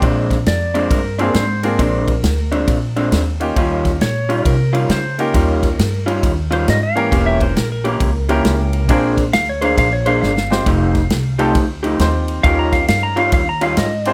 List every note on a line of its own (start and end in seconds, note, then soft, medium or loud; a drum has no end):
0.02 0.43 A#1 medium
0.02 0.36 A#2 medium
0.02 0.36 G#3 medium
0.02 0.36 C4 medium
0.02 0.36 D4 medium
0.02 kick loud
0.02 ride medium
0.31 kick medium
0.31 snare soft
0.31 ride medium
0.46 0.87 F2 medium
0.46 0.90 D5 medium
0.46 snare loud
0.46 ride medium
0.74 1.00 A#2 medium
0.74 1.00 G#3 medium
0.74 1.00 C4 medium
0.74 0.99 D4 loud
0.74 ride medium
0.90 1.31 G2 loud
0.90 1.34 A#4 medium
0.90 kick loud
0.90 snare soft
0.90 ride medium
1.19 1.44 A#2 medium
1.19 1.44 G#3 medium
1.19 1.34 A#3 medium
1.19 1.34 C4 medium
1.19 1.44 C4 loud
1.19 1.43 D4 medium
1.19 1.34 D4 medium
1.19 1.34 F4 medium
1.19 1.34 G#4 medium
1.19 ride medium
1.34 1.75 G#2 loud
1.34 1.63 C5 medium
1.34 snare loud
1.34 ride medium
1.63 1.78 A#3 medium
1.63 1.78 C4 medium
1.63 1.78 D4 medium
1.63 1.78 F4 medium
1.63 1.79 G#4 medium
1.63 2.50 A#4 medium
1.63 ride medium
1.79 2.20 A#1 loud
1.79 2.12 A#2 medium
1.79 2.13 G#3 medium
1.79 2.13 C4 medium
1.79 2.13 D4 loud
1.79 kick loud
1.79 snare soft
1.79 ride medium
2.08 kick medium
2.08 ride medium
2.23 2.64 D2 medium
2.23 snare loud
2.23 ride medium
2.52 2.77 A#2 medium
2.52 2.77 G#3 medium
2.52 2.77 C4 medium
2.52 2.77 D4 medium
2.52 ride medium
2.68 3.09 A#1 loud
2.68 kick loud
2.68 snare soft
2.68 ride medium
2.96 3.22 A#2 medium
2.96 3.21 G#3 medium
2.96 3.21 C4 medium
2.96 3.21 D4 loud
2.96 ride medium
3.12 3.56 D#2 medium
3.12 snare loud
3.12 ride medium
3.40 3.98 A#3 medium
3.40 3.98 C#4 medium
3.40 3.98 D#4 medium
3.40 3.98 F4 medium
3.40 3.98 G4 medium
3.40 ride medium
3.56 3.97 D#2 medium
3.56 3.90 D#3 medium
3.56 3.90 G3 medium
3.56 3.91 C#4 medium
3.56 3.91 F4 loud
3.56 kick loud
3.56 ride medium
3.85 kick medium
3.85 snare soft
3.85 ride medium
4.01 4.42 A#2 medium
4.01 4.45 C#5 loud
4.01 snare loud
4.01 ride medium
4.29 4.54 D#3 medium
4.29 4.54 G3 medium
4.29 4.54 C#4 medium
4.29 4.54 F4 medium
4.29 ride medium
4.45 4.86 C3 medium
4.45 4.89 A#4 medium
4.45 kick loud
4.45 ride medium
4.73 4.99 D#3 medium
4.73 4.98 G3 medium
4.73 4.98 C#4 medium
4.73 4.98 F4 loud
4.73 ride medium
4.89 5.30 C#3 medium
4.89 5.18 C5 medium
4.89 snare loud
4.89 ride medium
5.18 5.76 A#3 medium
5.18 5.76 C#4 medium
5.18 5.76 D#4 medium
5.18 5.76 F4 medium
5.18 5.76 G4 medium
5.18 6.05 A#4 medium
5.18 ride medium
5.34 5.75 D#2 loud
5.34 5.67 D#3 medium
5.34 5.67 G3 medium
5.34 5.68 C#4 medium
5.34 5.68 F4 medium
5.34 kick loud
5.34 snare soft
5.34 ride medium
5.63 kick medium
5.63 snare soft
5.63 ride medium
5.79 6.19 G2 medium
5.79 snare loud
5.79 ride loud
6.06 6.32 D#3 medium
6.06 6.32 G3 medium
6.06 6.31 C#4 loud
6.06 6.31 F4 medium
6.06 ride medium
6.23 6.64 D#2 medium
6.23 kick loud
6.23 snare soft
6.23 ride loud
6.51 6.76 D#3 medium
6.51 6.76 G3 medium
6.51 6.76 C#4 medium
6.51 6.76 F4 loud
6.51 6.67 C5 medium
6.51 ride medium
6.68 7.08 G#2 loud
6.68 6.83 D#5 loud
6.68 snare loud
6.68 ride medium
6.83 7.26 F5 loud
6.95 7.53 E3 medium
6.95 7.53 A#3 medium
6.95 7.53 C#4 medium
6.95 7.53 G4 medium
6.95 7.54 A#4 medium
6.95 ride medium
7.11 7.53 E1 loud
7.11 7.45 E3 medium
7.11 7.45 A#3 medium
7.11 7.45 C#4 medium
7.11 7.45 G4 loud
7.11 kick loud
7.11 snare soft
7.11 ride medium
7.26 7.41 E5 loud
7.41 7.56 C5 loud
7.41 kick medium
7.41 ride medium
7.56 7.97 A#1 loud
7.56 7.71 A#4 medium
7.56 snare loud
7.56 ride medium
7.72 9.00 A#4 loud
7.84 8.10 E3 medium
7.84 8.10 A#3 medium
7.84 8.09 C#4 medium
7.84 8.09 G4 medium
7.84 ride medium
8.00 8.41 C#2 loud
8.00 kick loud
8.00 ride medium
8.29 8.54 E3 medium
8.29 8.86 A#3 medium
8.29 8.54 A#3 medium
8.29 8.86 C#4 medium
8.29 8.54 C#4 loud
8.29 8.86 E4 medium
8.29 8.53 G4 loud
8.29 8.86 G4 medium
8.29 8.87 A#4 medium
8.29 ride medium
8.45 8.89 C#2 loud
8.45 snare loud
8.45 ride medium
8.73 ride medium
8.88 9.30 A#1 loud
8.88 9.23 A#3 medium
8.88 9.14 C4 medium
8.88 9.15 D4 medium
8.88 9.23 D4 loud
8.88 9.15 F4 medium
8.88 9.15 G#4 medium
8.88 9.23 G#4 medium
8.88 9.15 A#4 medium
8.88 9.23 C5 loud
8.88 kick loud
8.88 ride medium
9.17 kick medium
9.17 snare soft
9.17 ride medium
9.33 9.74 D2 medium
9.33 9.48 F5 loud
9.33 snare loud
9.33 ride medium
9.49 9.63 C#5 medium
9.62 9.87 A#3 medium
9.62 9.86 D4 medium
9.62 9.87 G#4 medium
9.62 9.86 C5 loud
9.62 9.77 F5 medium
9.62 ride medium
9.78 10.18 A#1 loud
9.78 9.93 F5 loud
9.78 kick loud
9.78 snare soft
9.78 ride medium
9.93 10.07 C#5 loud
10.06 10.31 A#3 medium
10.06 10.31 D4 medium
10.06 10.31 G#4 medium
10.06 10.30 C5 medium
10.06 10.20 F5 loud
10.06 ride medium
10.22 10.63 G1 medium
10.22 11.51 F5 loud
10.22 snare medium
10.37 snare medium
10.50 10.65 C4 medium
10.50 10.65 D#4 medium
10.50 10.65 F4 medium
10.50 10.65 G4 medium
10.50 10.65 C5 medium
10.50 snare loud
10.66 11.07 F1 loud
10.66 11.00 F3 medium
10.66 11.00 A3 medium
10.66 11.00 D#4 loud
10.66 11.00 G4 medium
10.66 kick loud
10.66 snare soft
10.66 ride medium
10.95 kick medium
10.95 snare soft
10.95 ride medium
11.10 11.52 C2 medium
11.10 snare loud
11.10 ride medium
11.38 11.64 F3 medium
11.38 11.64 A3 medium
11.38 11.53 C4 medium
11.38 11.53 D#4 medium
11.38 11.64 D#4 medium
11.38 11.54 F4 medium
11.38 11.63 G4 medium
11.38 11.54 G4 medium
11.38 11.54 A4 medium
11.38 ride medium
11.55 11.96 D2 loud
11.55 kick loud
11.55 snare soft
11.55 ride medium
11.83 12.08 F3 medium
11.83 12.08 A3 medium
11.83 12.08 D#4 medium
11.83 12.08 G4 medium
11.83 ride medium
11.99 12.40 D#2 loud
11.99 12.44 C4 medium
11.99 12.42 D#4 medium
11.99 12.43 F4 medium
11.99 12.44 G4 medium
11.99 12.45 C5 medium
11.99 snare loud
11.99 ride medium
12.28 ride medium
12.43 12.84 D#2 loud
12.43 12.77 D#3 medium
12.43 12.77 G3 medium
12.43 13.11 C#4 medium
12.43 12.77 C#4 medium
12.43 13.11 D#4 medium
12.43 13.11 F4 medium
12.43 12.78 F4 medium
12.43 13.12 G4 medium
12.43 13.12 A#4 medium
12.43 12.58 F5 loud
12.43 kick loud
12.43 snare soft
12.43 ride medium
12.59 12.73 A#5 loud
12.72 12.87 F5 medium
12.72 kick medium
12.72 snare soft
12.72 ride medium
12.88 13.29 G2 medium
12.88 13.03 F5 loud
12.88 snare loud
12.88 ride medium
13.03 13.17 A#5 loud
13.16 13.41 D#3 medium
13.16 13.41 G3 medium
13.16 13.41 C#4 medium
13.16 13.41 F4 loud
13.16 13.33 F5 medium
13.16 ride medium
13.32 13.73 D#2 loud
13.32 13.48 F5 loud
13.32 kick loud
13.32 snare soft
13.32 ride medium
13.49 13.63 A#5 medium
13.61 13.86 D#3 medium
13.61 13.86 G3 medium
13.61 13.86 C#4 loud
13.61 13.86 F4 loud
13.61 13.77 F5 medium
13.61 ride medium
13.77 14.13 G#2 medium
13.77 14.13 D#5 loud
13.77 snare loud
13.77 ride loud
14.05 14.13 C4 medium
14.05 14.13 D4 medium
14.05 14.13 F4 medium
14.05 14.13 G#4 medium
14.05 14.13 C5 medium
14.05 ride medium